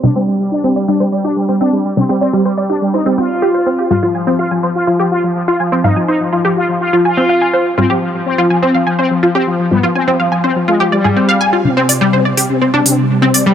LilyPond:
<<
  \new Staff \with { instrumentName = "Synth pluck" } { \time 4/4 \key f \dorian \tempo 4 = 124 c'16 c'16 r8. c'16 d''16 g16 c''16 d''16 g'16 r16 c'16 c'16 r8 | r16 c'16 d''16 g16 c''16 d''16 g'16 r16 c'16 c'16 c'16 r16 g'16 c''16 c'16 g'16 | r16 f'16 aes''16 c'16 f''16 aes''16 c''16 r16 f'16 g'16 r8. f'16 aes''16 c'16 | f''16 aes''16 c''16 r16 f'16 g'16 r8. f'16 aes''16 c'16 f''16 aes''16 c''16 r16 |
f'16 g'16 r8. f'16 aes''16 c'16 f''16 aes''16 c''16 r16 f'16 g'16 r8 | r16 f'16 aes''16 c'16 f''16 aes''16 c''16 r16 f'16 g'16 d''16 aes'16 c'16 f''16 aes''16 f'16 | r16 c'16 d''16 g16 c''16 d''16 g'16 r16 c'16 d'16 r8. c'16 d''16 g16 | }
  \new Staff \with { instrumentName = "Analog polysynth" } { \clef bass \time 4/4 \key f \dorian d'16 g16 g16 g16 d'16 g16 g16 d'16 g16 g16 d'16 g16 g16 d'16 g16 g16 | c'16 g16 c'16 g16 g16 g16 d'16 g16 ees'16 g16 f'4~ f'16 r16 | f'16 f16 f16 f16 f'16 f16 f16 f'16 f16 f16 f'16 f16 f16 f'16 f16 f16 | ees'16 f16 ees'16 f16 f16 f16 f'16 f16 f'16 f16 f'4~ f'16 r16 |
c'16 f16 f16 f16 c'16 f16 f16 c'16 f16 f16 c'16 f16 f16 c'16 f16 f16 | b16 f16 c'16 f16 f16 f16 c'16 f16 aes16 f16 g4~ g16 r16 | <c c'>16 c16 c16 c16 <c c'>16 c16 c16 <c c'>16 c16 c16 <c c'>16 c16 c16 <c c'>16 c16 c16 | }
  \new Staff \with { instrumentName = "Synth stab" } { \clef bass \time 4/4 \key f \dorian <c g d'>1 | <c g d'>16 r2. r8. | <aes, g f'>1 | <aes, g f'>16 r2. r8. |
<aes, g f'>1 | <aes, g f'>16 r2 r8 <aes, g f'>16 r4 | <c g d'>1 | }
  \new Staff \with { instrumentName = "Synth drone" } { \clef bass \time 4/4 \key f \dorian r1 | r1 | r1 | r1 |
r1 | r1 | <c g>1 | }
  \new DrumStaff \with { instrumentName = "Drums" } \drummode { \time 4/4 r4 r4 r4 r4 | r4 r4 r4 r4 | r4 r4 r4 r4 | r4 r4 r4 r4 |
r4 r4 r4 r4 | r4 r4 r4 r4 | r8 hho8 r8 hho8 r8 hho8 r8 hho8 | }
>>